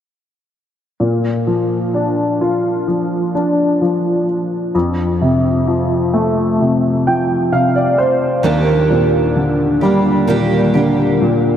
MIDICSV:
0, 0, Header, 1, 3, 480
1, 0, Start_track
1, 0, Key_signature, -2, "major"
1, 0, Tempo, 934579
1, 515, Time_signature, 4, 2, 24, 8
1, 2436, Tempo, 924499
1, 5980, End_track
2, 0, Start_track
2, 0, Title_t, "Steel-string acoustic guitar"
2, 0, Program_c, 0, 25
2, 4351, Note_on_c, 0, 51, 55
2, 4356, Note_on_c, 0, 58, 55
2, 4360, Note_on_c, 0, 62, 64
2, 4363, Note_on_c, 0, 67, 56
2, 5061, Note_off_c, 0, 67, 0
2, 5068, Note_on_c, 0, 67, 36
2, 5071, Note_off_c, 0, 51, 0
2, 5075, Note_off_c, 0, 62, 0
2, 5078, Note_on_c, 0, 62, 32
2, 5084, Note_off_c, 0, 58, 0
2, 5086, Note_on_c, 0, 58, 30
2, 5307, Note_off_c, 0, 58, 0
2, 5308, Note_on_c, 0, 51, 60
2, 5311, Note_off_c, 0, 62, 0
2, 5311, Note_off_c, 0, 67, 0
2, 5313, Note_on_c, 0, 58, 58
2, 5318, Note_on_c, 0, 62, 61
2, 5321, Note_on_c, 0, 67, 67
2, 5542, Note_off_c, 0, 67, 0
2, 5548, Note_on_c, 0, 67, 37
2, 5551, Note_off_c, 0, 62, 0
2, 5552, Note_off_c, 0, 51, 0
2, 5555, Note_off_c, 0, 58, 0
2, 5557, Note_on_c, 0, 62, 35
2, 5565, Note_on_c, 0, 58, 31
2, 5980, Note_off_c, 0, 58, 0
2, 5980, Note_off_c, 0, 62, 0
2, 5980, Note_off_c, 0, 67, 0
2, 5980, End_track
3, 0, Start_track
3, 0, Title_t, "Grand piano"
3, 0, Program_c, 1, 0
3, 513, Note_on_c, 1, 46, 37
3, 627, Control_c, 1, 64, 127
3, 754, Note_on_c, 1, 53, 32
3, 997, Note_on_c, 1, 62, 32
3, 1239, Note_on_c, 1, 65, 36
3, 1470, Note_off_c, 1, 53, 0
3, 1478, Note_on_c, 1, 53, 32
3, 1712, Note_off_c, 1, 62, 0
3, 1720, Note_on_c, 1, 62, 36
3, 1951, Note_off_c, 1, 53, 0
3, 1959, Note_on_c, 1, 53, 32
3, 2178, Note_off_c, 1, 65, 0
3, 2415, Note_off_c, 1, 46, 0
3, 2417, Note_off_c, 1, 62, 0
3, 2423, Note_off_c, 1, 53, 0
3, 2439, Note_on_c, 1, 41, 42
3, 2443, Control_c, 1, 64, 0
3, 2526, Control_c, 1, 64, 127
3, 2680, Note_on_c, 1, 48, 32
3, 2920, Note_on_c, 1, 53, 35
3, 3159, Note_on_c, 1, 57, 36
3, 3393, Note_off_c, 1, 48, 0
3, 3401, Note_on_c, 1, 48, 33
3, 3637, Note_off_c, 1, 53, 0
3, 3644, Note_on_c, 1, 53, 36
3, 3645, Note_on_c, 1, 79, 44
3, 3863, Note_off_c, 1, 79, 0
3, 3872, Note_off_c, 1, 48, 0
3, 3880, Note_on_c, 1, 48, 39
3, 3881, Note_on_c, 1, 77, 51
3, 3990, Note_off_c, 1, 77, 0
3, 4000, Note_on_c, 1, 74, 47
3, 4094, Note_off_c, 1, 57, 0
3, 4109, Note_off_c, 1, 74, 0
3, 4118, Note_on_c, 1, 72, 48
3, 4335, Note_off_c, 1, 41, 0
3, 4337, Note_off_c, 1, 53, 0
3, 4340, Note_off_c, 1, 72, 0
3, 4342, Note_off_c, 1, 48, 0
3, 4356, Note_on_c, 1, 39, 47
3, 4362, Control_c, 1, 64, 0
3, 4447, Control_c, 1, 64, 127
3, 4595, Note_on_c, 1, 46, 36
3, 4834, Note_on_c, 1, 50, 37
3, 5074, Note_on_c, 1, 55, 40
3, 5304, Note_off_c, 1, 46, 0
3, 5312, Note_on_c, 1, 46, 36
3, 5544, Note_off_c, 1, 50, 0
3, 5552, Note_on_c, 1, 50, 38
3, 5789, Note_off_c, 1, 46, 0
3, 5797, Note_on_c, 1, 46, 39
3, 5980, Note_off_c, 1, 39, 0
3, 5980, Note_off_c, 1, 46, 0
3, 5980, Note_off_c, 1, 50, 0
3, 5980, Note_off_c, 1, 55, 0
3, 5980, End_track
0, 0, End_of_file